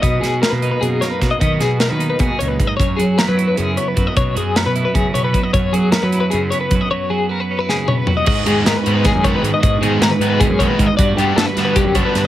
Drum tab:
CC |-------|-------|-------|-------|
HH |xxxxxxx|xxxxxxx|xxxxxxx|xxxxxxx|
SD |-oo--oo|-oo----|--o----|--o----|
T2 |-------|-------|-------|-------|
FT |-------|-------|-------|-------|
BD |o-----o|o---o-o|o-----o|o---o-o|

CC |-------|-------|x------|-------|
HH |xxxxxxx|-------|-xxxxxx|xxxxxxx|
SD |--o----|----o--|--o-o--|--o----|
T2 |-------|-----o-|-------|-------|
FT |-------|------o|-------|-------|
BD |o-----o|-------|o---oo-|o---ooo|

CC |-------|
HH |xxxxxxx|
SD |--oo--o|
T2 |-------|
FT |-------|
BD |o---oo-|